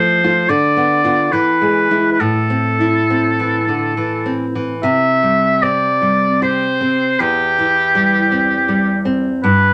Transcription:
Already playing: F3 A3 C5
0.24 A3 F4
0.49 D3 D5
0.77 B3
1.04 B3 F4
1.32 E3 B4
1.61 G#3
1.91 G#3 E4
2.12 B4
2.19 A2 A4
2.50 C4
2.80 E4
3.10 C4
3.39 E3
3.68 D3
3.97 E3
4.26 C4
4.55 E3
4.83 C3 E5
5.23 G3
5.62 C4 D5
6.01 G3
6.42 G4 C5
6.81 C4
7.20 E2 G4
7.58 E3
7.95 G3
8.31 C4
8.68 G3
9.05 C4
9.43 G2 B4

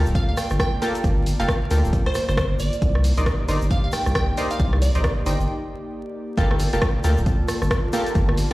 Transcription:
Already playing: A#3 F4 A4 D5
0.06 D1, shaker
0.15 F5, kick, closed hi-hat, shaker
0.29 F5
0.37 G5, cross-stick, open hi-hat, shaker
0.50 G1, cross-stick, shaker
0.59 G5, kick, cross-stick, closed hi-hat, shaker
0.82 A#3 F4 G4 A4, open hi-hat, shaker
0.95 closed hi-hat, shaker
1.04 G1, kick, cross-stick, closed hi-hat, shaker
1.26 open hi-hat, shaker
1.40 F1 A#3 F4 G4 A4 F5, closed hi-hat, shaker
1.48 kick, cross-stick, closed hi-hat, shaker
1.71 D2 A#3 F4 G4 A4, open hi-hat, shaker
1.84 D1, shaker
1.93 kick, closed hi-hat, shaker
2.06 C5, cross-stick, closed hi-hat
2.14 cross-stick, open hi-hat, shaker
2.29 G1 C5, cross-stick, closed hi-hat, shaker
2.37 C5, kick, cross-stick, closed hi-hat, shaker
2.59 G1 D5, open hi-hat, shaker
2.73 closed hi-hat, shaker
2.82 C2 D#4 G4, kick, closed hi-hat, shaker
2.95 cross-stick
3.04 open hi-hat, shaker
3.17 A#1 D#4 A#4 C5 D5, closed hi-hat, shaker
3.26 kick, cross-stick, closed hi-hat, shaker
3.48 G1 D#4 A#4 C5 D5, open hi-hat, shaker
3.62 G1, shaker
3.71 F5, kick, closed hi-hat, shaker
3.84 F5
3.92 G5, cross-stick, open hi-hat, shaker
4.06 C2, cross-stick, shaker
4.15 G5, kick, cross-stick, closed hi-hat, shaker
4.37 D#4 A#4 C5 D5, open hi-hat, shaker
4.50 F5, closed hi-hat, shaker
4.59 C2 F5, kick, cross-stick, closed hi-hat, shaker
4.73 cross-stick
4.82 D5, open hi-hat, shaker
4.95 A#1 D#4 A#4 C5 D5, closed hi-hat, shaker
5.04 kick, cross-stick, closed hi-hat, shaker
5.26 G1 D#4 A#4 C5 D5 G5, open hi-hat, shaker
5.40 G1, shaker
6.37 G1 A#3 F4 G4 A4 D5, kick, closed hi-hat, shaker
6.51 A#3, cross-stick
6.56 A5, shaker
6.60 open hi-hat
6.73 F1 A#3 F4 G4 A4, closed hi-hat, shaker
6.82 kick, cross-stick, closed hi-hat
7.04 D2 A#3 F4 G4 A4, open hi-hat, shaker
7.18 D1, shaker
7.26 kick, closed hi-hat, shaker
7.48 cross-stick, open hi-hat, shaker
7.62 G1, cross-stick, shaker
7.71 kick, cross-stick, closed hi-hat, shaker
7.93 A#3 F4 G4 A4, open hi-hat, shaker
8.06 closed hi-hat, shaker
8.15 G1 G4, kick, cross-stick, closed hi-hat, shaker
8.29 cross-stick
8.37 open hi-hat, shaker

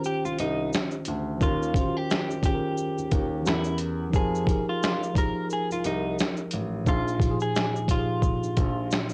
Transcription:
Already playing: D#3 C#4 F4 G4 C5
0.04 G4, shaker
0.25 C2 F4, shaker
0.39 C2 D#4, closed hi-hat, shaker
0.73 finger snap, snare, shaker
0.91 shaker
1.05 D2, closed hi-hat, shaker
1.37 D#2 D#3 C#4 F4, kick, shaker
1.42 F4 G4 A#4
1.62 shaker
1.73 D#3 C#4 F4, kick, closed hi-hat, shaker
1.77 F#4 C5
1.84 G4
1.97 G4
2.10 finger snap, snare, shaker
2.30 shaker
2.42 D#3 C#4 F4 G4, kick, closed hi-hat, shaker
2.46 G4 G#4
2.55 A#4
2.77 shaker
2.98 D#2, shaker
3.11 D#2, kick, closed hi-hat, shaker
3.42 E3 C#4, shaker
3.46 E2 E4 G4 A#4, finger snap, snare
3.64 shaker
3.78 closed hi-hat, shaker
4.10 F3 D#4 G4, kick, shaker
4.14 F2 G#4 A#4
4.35 shaker
4.45 F3 D#4 G4, kick, closed hi-hat, shaker
4.49 G#4 A#4
4.69 F4
4.83 finger snap, snare, shaker
5.03 shaker
5.14 F3 D#4 G4, kick, closed hi-hat, shaker
5.18 G#4 A#4
5.50 G#4, shaker
5.70 C2 F4, shaker
5.84 C2 D#4, closed hi-hat, shaker
6.19 finger snap, snare, shaker
6.37 shaker
6.51 A1, closed hi-hat, shaker
6.84 A#1 A#2 F3 D#4, kick, shaker
6.88 F4 G#4
7.08 shaker
7.18 A#2 F3, kick, closed hi-hat, shaker
7.22 D#4 G4
7.31 G#4
7.40 G#4, shaker
7.56 finger snap, snare, shaker
7.76 shaker
7.86 A#2 F3, kick, closed hi-hat, shaker
7.90 D#4 F4 G4
7.99 G#4
8.22 kick, shaker
8.43 A#1, shaker
8.57 A#1, kick, closed hi-hat, shaker
8.91 finger snap, snare, shaker
9.09 shaker

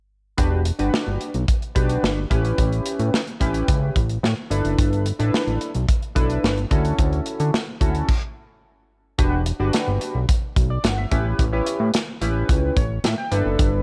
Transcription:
0.38 E1 D4 F#4 G4 B4, kick, closed hi-hat
0.65 closed hi-hat
0.79 G1 D4 F#4 G4 B4, closed hi-hat
0.94 snare
1.07 G1
1.21 closed hi-hat
1.34 B1, closed hi-hat
1.48 kick, closed hi-hat
1.62 closed hi-hat
1.75 B1 D4 F#4 G4 B4, kick, closed hi-hat
1.89 closed hi-hat
2.03 G1, snare
2.30 A1 C#4 E4 G4 B4, kick, closed hi-hat
2.45 closed hi-hat
2.58 A1, kick, closed hi-hat
2.73 closed hi-hat
2.86 closed hi-hat
2.99 A2, closed hi-hat
3.14 snare
3.27 closed hi-hat
3.40 A1 C#4 E4 G4 B4, kick, closed hi-hat
3.54 closed hi-hat
3.68 C#2, kick, closed hi-hat
3.96 A1, kick, closed hi-hat
4.09 closed hi-hat
4.23 A2, snare
4.50 G1 D4 E4 A4 B4, closed hi-hat
4.65 F#1, closed hi-hat
4.78 G1, kick, closed hi-hat
4.93 closed hi-hat
5.06 closed hi-hat
5.19 A1 D4 E4 A4 B4, closed hi-hat
5.34 snare
5.47 A1, closed hi-hat
5.61 closed hi-hat
5.75 B1, closed hi-hat
5.89 kick, closed hi-hat
6.03 closed hi-hat
6.15 B1 D4 E4 A4 B4, kick, closed hi-hat
6.30 closed hi-hat
6.43 G1, snare
6.58 closed hi-hat
6.70 D2 C#4 E4 F#4 A4, kick, closed hi-hat
6.85 closed hi-hat
6.99 D2, kick, closed hi-hat
7.13 closed hi-hat
7.26 closed hi-hat
7.40 D3, closed hi-hat
7.54 snare
7.81 D2 C#4 E4 F#4 A4, kick, closed hi-hat
7.95 closed hi-hat
8.09 kick, crash
9.18 E1 D4 F#4 G4 B4, kick, closed hi-hat
9.46 closed hi-hat
9.60 G1 D4 F#4 G4 B4
9.73 snare, closed hi-hat
9.88 G1
10.01 closed hi-hat
10.15 B1
10.29 kick, closed hi-hat
10.56 B1, kick, closed hi-hat
10.70 D5
10.84 G1 F#5, snare, closed hi-hat
10.98 E5
11.11 A1 C#4 E4 G4 B4, kick, closed hi-hat
11.39 A1, kick, closed hi-hat
11.53 C#4 E4 G4 B4
11.66 closed hi-hat
11.80 A2
11.94 snare, closed hi-hat
12.21 A1 C#4 E4 G4 B4, closed hi-hat
12.49 C#2, kick, closed hi-hat
12.77 A1 C#5, kick, closed hi-hat
13.04 A2 E5, snare, closed hi-hat
13.18 G5
13.31 G1 D4 E4 A4 B4, closed hi-hat
13.45 F#1
13.59 G1, kick, closed hi-hat

